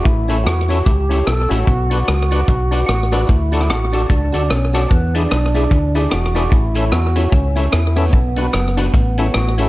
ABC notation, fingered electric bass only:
X:1
M:4/4
L:1/8
Q:"Swing" 1/4=148
K:Bm
V:1 name="Fingered electric bass" clef=bass
A,,,2 E,,2 C,,2 B,,, A,,, | B,,,2 C,,2 B,,,2 A,,,2 | D,,2 A,,,2 C,, D,, B,,,2 | E,,2 B,,,2 D,,2 E,,,2 |
A,,,2 E,,2 C,,2 E,,2 | B,,,2 F,,,2 A,,,2 A,,,2 |]